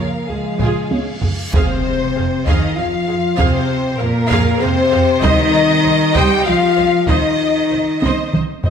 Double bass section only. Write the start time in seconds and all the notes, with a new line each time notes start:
0.30 C#2
0.60 C#2
0.92 C#2
1.23 C#2
1.54 F2
2.16 F2
2.47 F2
2.78 F2
3.09 F2
3.39 F2
4.01 F2
4.31 F2
4.62 F2
4.92 F2
5.23 C2
5.85 C2
6.15 C2
6.47 C2
6.78 C2
7.08 C2
7.71 C2
8.03 C2
8.34 C2
8.65 C2